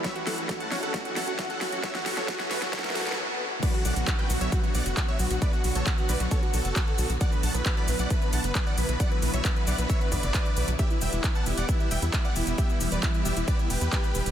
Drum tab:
CC |--------------------------------|--------------------------------|x-------------------------------|--------------------------------|
HH |x-x-o-x-x-x-o-x-x-x-o-x-x-x-o-x-|x-x-o-x-x-x-o-x-x-x-o-x---------|x---o-x-x---o-x-x---o-x-x---o-x-|x---o-x-x---o-x-x---o-x-x---o-x-|
SH |--------------------------------|--------------------------------|x-x-x-x-x-x-x-x-x-x-x-x-x-x-x-x-|x-x-x-x-x-x-x-x-x-x-x-x-x-x-x-x-|
CP |--------------------------------|--------------------------------|--------x---------------x-------|--------x---------------x-------|
SD |o---o---o---o---o---o---o---o---|o-o-o-o-o-o-o-o-oooooooo--------|--------------------------------|--------------------------------|
BD |o-------o-------o-------o-------|o-------o-------o---------------|o-------o-------o-------o-------|o-------o-------o-------o-------|

CC |--------------------------------|--------------------------------|--------------------------------|--------------------------------|
HH |x---o-x-x---o-x-x---o-x-x---o-x-|x---o-x-x---o-x-x---o-x-x---o-x-|x---o-x-x---o-x-x---o-x-x---o-x-|x---o-x-x---o-x-x---o-x-x---o-x-|
SH |x-x-x-x-x-x-x-x-x-x-x-x-x-x-x-x-|x-x-x-x-x-x-x-x-x-x-x-x-x-x-x-x-|x-x-x-x-x-x-x-x-x-x-x-x-x-x-x-x-|x-x-x-x-x-x-x-x-x-x-x-x-x-x-x-x-|
CP |--------x---------------x-------|--------x---------------x-------|--------x---------------x-------|--------x---------------x-------|
SD |--------------------------------|--------------------------------|--------------------------------|--------------------------------|
BD |o-------o-------o-------o-------|o-------o-------o---o---o-------|o-------o-------o-------o-------|o-------o-------o-------o-------|